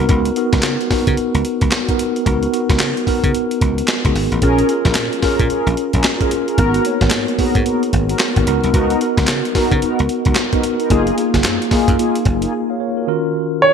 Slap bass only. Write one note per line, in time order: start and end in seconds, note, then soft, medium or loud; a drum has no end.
0.09 0.29 C#2 loud
0.53 0.61 C#2 medium
0.64 0.76 C#3 loud
0.91 muted slap bass stroke soft
1.07 1.15 C#3 medium
1.18 muted slap bass stroke soft
1.34 1.42 C#2 loud
1.62 1.69 C#2 medium
2.27 2.46 C#2 loud
2.70 2.77 C#2 medium
2.81 2.92 C#3 loud
3.07 muted slap bass stroke soft
3.24 3.31 C#3 medium
3.62 3.81 C#2 medium
4.05 4.12 C#2 medium
4.15 4.27 G#1 medium
4.32 4.39 A1 medium
4.42 4.62 A#1 loud
4.85 4.93 A#1 medium
4.96 5.08 A#2 medium
5.23 muted slap bass stroke medium
5.40 5.47 A#2 medium
5.50 muted slap bass stroke soft
5.67 5.74 A#1 medium
5.94 6.01 A#1 medium
6.58 6.78 G#1 loud
7.01 7.09 G#1 medium
7.13 7.25 G#2 medium
7.39 muted slap bass stroke medium
7.55 7.63 G#2 medium
7.93 8.13 G#1 loud
8.37 8.44 G#1 medium
8.47 8.59 C#2 loud
8.64 8.71 C2 medium
8.74 8.94 C#2 loud
9.18 9.25 C#2 loud
9.29 9.41 C#3 medium
9.55 muted slap bass stroke soft
9.72 9.79 C#3 loud
9.83 muted slap bass stroke soft
10.00 10.07 C#2 medium
10.26 10.34 C#2 medium
10.91 11.10 F#1 loud
11.34 11.42 F#1 medium
11.45 11.57 F#2 medium
11.72 muted slap bass stroke soft
11.88 11.96 F#2 medium
12.26 12.45 F#1 loud